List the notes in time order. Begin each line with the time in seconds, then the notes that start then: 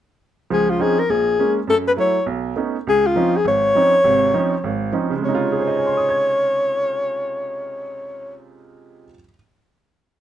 0.50 C#2 F3 G#4
0.70 F4
0.79 F3 C4 C#4 D#4 G#4
0.99 A#4
1.10 A#1 G#4
1.39 G#3 A#3 C#4
1.67 F#2 A4
1.88 B4
1.97 F#3 A3 E4 C#5
2.26 B1
2.56 A3 B3 C#4 D#4
2.87 C#2 G#4
3.07 F4
3.16 F3 C4 C#4 D#4
3.37 G#4
3.45 G#1 C#5
3.75 F3 C4 C#4 D#4
4.04 G#1 C3
4.34 F3 C4 C#4 D#4
4.64 G#1
4.92 F3 C4 C#4 D#4
5.10 C#3
5.16 G#3
5.22 C3 C#5
5.28 D#4
5.35 F4
5.52 G#4
5.59 C5
5.67 D#5
5.77 G#5
5.86 C6
5.97 D#6
6.09 G#6